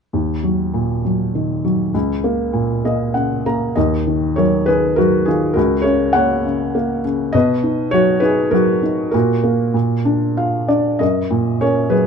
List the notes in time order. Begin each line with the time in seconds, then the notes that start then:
0.13 D#2
0.43 F#3
0.74 A#2
1.05 F#3
1.35 D#3
1.64 F#3
1.94 C#2
2.24 A#3
2.53 A#2
2.85 A#3 D#5
3.14 C#3 F#5
3.46 A#3 A#5
3.76 D#2 A#4 D#5
4.07 D#3
4.36 F#3 A#4 C#5
4.66 D#3 G#4 B4
4.96 F#3 F#4 A#4
5.26 D#3 F4 G#4
5.54 C#2 F#4 A#4
5.82 C#3 A#4 C#5
6.13 A#3 C#5 F#5
6.46 C#3
6.75 A#3
7.05 C#3
7.33 B2 B4 D#5
7.64 D#4
7.91 F#3 F#4 C#5
8.20 D#4 B4
8.24 G#4
8.51 F#3 F#4 A#4
8.83 D#4
9.11 A#2 F#4 A#4
9.44 A#3
9.74 A#2
10.05 D4
10.37 F4 F5
10.68 D4 D5
10.99 F#2 A#4 D#5
11.31 A#2
11.61 C#4 A#4 C#5
11.89 F#3 G#4 B4